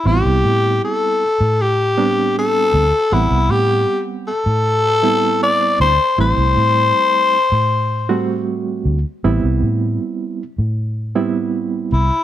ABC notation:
X:1
M:4/4
L:1/16
Q:1/4=78
K:Ador
V:1 name="Tenor saxophone"
G4 A4 G4 A4 | E2 G2 z2 A6 d2 c2 | c12 z4 | z12 z2 E2 |]
V:2 name="Reed electric piano"
[G,B,CE]6 z4 [G,B,CD]4 z2 | [G,B,Cf]6 z4 [G,B,CE]4 z2 | [G,A,CE]6 z4 [G,A,CF]4 z2 | [G,B,CE]6 z4 [G,B,CE]4 z2 |]
V:3 name="Fingered electric bass" clef=bass
A,,, C,, A,,2 z3 A,,6- A,, D,, z | A,,, C,, A,,2 z3 A,,6- A,, D,, z | A,,, C,, A,,2 z3 A,,6- A,, D,, z | A,,, C,, A,,2 z3 A,,6- A,, C,, z |]